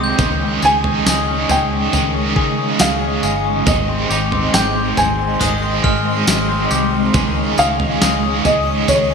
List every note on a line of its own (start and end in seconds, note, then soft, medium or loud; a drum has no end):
0.00 0.14 C2 medium
0.00 0.19 D#3 medium
0.00 0.15 G#3 medium
0.00 0.19 G#3 medium
0.00 0.19 C4 medium
0.00 0.28 C4 medium
0.00 0.20 D#4 medium
0.00 0.20 G4 medium
0.00 0.28 G4 medium
0.00 0.15 G5 medium
0.00 0.16 C6 medium
0.00 0.59 D#6 medium
0.00 7.11 D#6 medium
0.00 0.83 G6 medium
0.18 0.57 C#2 loud
0.18 0.62 C#3 medium
0.18 1.92 D#3 medium
0.18 0.62 G#3 loud
0.18 9.14 G#3 medium
0.18 0.63 C#4 loud
0.18 0.62 D#4 loud
0.18 0.61 G#4 loud
0.18 3.63 D#5 medium
0.18 3.64 C#6 medium
0.18 kick loud
0.18 floor tom loud
0.18 tambourine medium
0.41 0.83 C#4 medium
0.62 1.01 C#2 loud
0.62 1.05 C#4 soft
0.62 1.07 D#4 medium
0.62 1.06 G#4 soft
0.62 1.06 G#4 medium
0.62 1.53 G#5 loud
0.62 tambourine medium
0.84 1.27 C#4 medium
0.84 floor tom medium
1.05 1.44 C#2 loud
1.05 1.93 G#3 medium
1.05 1.93 C#4 medium
1.05 1.95 D#4 medium
1.05 1.49 G#4 medium
1.05 1.96 G#4 medium
1.05 snare loud
1.05 tambourine loud
1.28 1.70 C#4 medium
1.49 1.88 C#2 loud
1.49 2.36 G#4 medium
1.49 2.84 G5 loud
1.49 floor tom medium
1.49 tambourine medium
1.71 2.13 C#4 medium
1.92 2.31 C#2 loud
1.92 3.66 C#3 medium
1.92 3.66 D#3 medium
1.92 3.66 G#3 medium
1.92 3.67 C#4 medium
1.92 floor tom medium
1.92 tambourine medium
1.96 3.67 D#4 medium
1.96 3.68 G#4 medium
2.14 2.56 C#4 medium
2.36 2.74 C#3 loud
2.36 2.79 G#4 medium
2.36 kick loud
2.58 3.00 C#4 medium
2.79 3.18 C#2 medium
2.79 3.23 G#4 medium
2.79 3.70 F5 loud
2.79 snare loud
2.79 tambourine loud
3.01 3.44 C#4 medium
3.23 3.61 G1 loud
3.23 4.09 G#4 medium
3.23 tambourine medium
3.45 3.75 C#4 medium
3.66 4.05 G#1 loud
3.66 5.40 D#3 medium
3.66 4.10 G#3 medium
3.66 4.10 C4 medium
3.66 4.11 D#4 medium
3.66 4.11 G4 medium
3.66 7.11 D#5 medium
3.66 4.57 D#5 loud
3.66 7.11 C6 medium
3.66 kick loud
3.66 floor tom loud
3.66 tambourine medium
3.88 4.30 C4 medium
4.10 4.49 G#1 loud
4.10 5.40 C4 soft
4.10 5.42 D#4 soft
4.10 4.52 G4 medium
4.10 tambourine medium
4.31 4.74 C4 medium
4.31 floor tom medium
4.53 4.92 G#1 loud
4.53 4.97 G4 medium
4.53 4.99 G5 loud
4.53 6.47 G6 medium
4.53 snare loud
4.53 tambourine loud
4.75 5.18 C4 medium
4.97 5.36 G#1 loud
4.97 6.67 G#5 loud
4.97 floor tom medium
4.97 tambourine medium
5.19 5.61 C4 medium
5.39 5.79 G#1 loud
5.39 7.14 D#3 medium
5.39 7.14 G#3 medium
5.39 7.15 C4 medium
5.39 7.15 D#4 medium
5.39 7.34 D#6 medium
5.39 floor tom medium
5.39 tambourine medium
5.62 6.04 C4 medium
5.84 6.22 G#2 loud
5.84 7.54 F6 medium
5.84 kick loud
6.05 6.48 C4 medium
6.27 6.66 G#1 loud
6.27 snare loud
6.27 tambourine loud
6.49 6.91 C4 medium
6.71 7.09 C2 loud
6.71 7.23 G4 medium
6.71 tambourine medium
6.92 7.23 C4 medium
7.13 7.53 C#2 loud
7.13 7.58 C#3 loud
7.13 8.88 D#3 medium
7.13 7.58 G#3 loud
7.13 7.58 C#4 loud
7.13 7.58 D#4 loud
7.13 7.56 G#4 loud
7.13 9.14 D#5 medium
7.13 9.14 C#6 medium
7.13 9.14 D#6 medium
7.13 kick loud
7.13 floor tom loud
7.13 tambourine medium
7.36 7.78 C#4 medium
7.57 7.96 C#2 loud
7.57 8.01 C#4 soft
7.57 8.02 D#4 soft
7.57 8.01 G#4 medium
7.57 8.48 F5 loud
7.57 tambourine medium
7.80 8.22 C#4 medium
7.80 floor tom medium
8.01 8.40 C#2 loud
8.01 8.88 G#3 medium
8.01 8.89 C#4 medium
8.01 8.89 D#4 medium
8.01 8.45 G#4 medium
8.01 8.92 G#4 medium
8.01 snare loud
8.01 tambourine loud
8.23 8.66 C#4 medium
8.45 8.83 C#2 loud
8.45 9.14 G#4 medium
8.45 8.90 D#5 loud
8.45 floor tom medium
8.45 tambourine medium
8.67 9.09 C#4 medium
8.87 9.14 C#2 loud
8.87 9.14 C#3 medium
8.87 9.14 D#3 medium
8.87 9.14 G#3 medium
8.87 9.14 C#4 medium
8.87 9.14 D#4 medium
8.87 9.14 C#5 loud
8.87 floor tom medium
8.87 tambourine medium
8.92 9.14 G#4 loud
9.10 9.14 C#4 medium